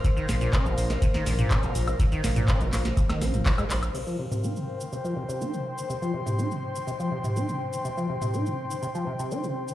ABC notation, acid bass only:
X:1
M:4/4
L:1/16
Q:1/4=123
K:Cm
V:1 name="Acid bass" clef=bass
B,, E, B,, B,, _D B,,2 _D, B,, E, B,, B,, D B,,2 D, | B,, E, B,, B,, _D B,,2 _D, B,, E, D F, F, A, z2 | C, F, C, C, E C,2 E, C, F, C, C, E C,2 E, | C, F, C, C, E C,2 E, C, F, C, C, E C,2 E, |
C, F, C, C, E C,2 E, C, F, C, C, E C,2 E, |]